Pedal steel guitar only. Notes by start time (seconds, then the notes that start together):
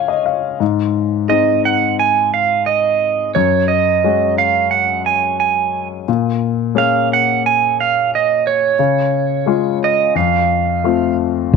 Already playing: G#5
1.30 D#5
1.65 F#5
1.99 G#5
2.34 F5
2.66 D#5
3.35 C#5
3.68 D#5
4.38 F5
4.71 F#5
5.06 G#5
5.40 G#5
6.78 F5
7.13 F#5
7.46 G#5
7.80 F5
8.15 D#5
8.47 C#5
9.84 D#5
10.17 F5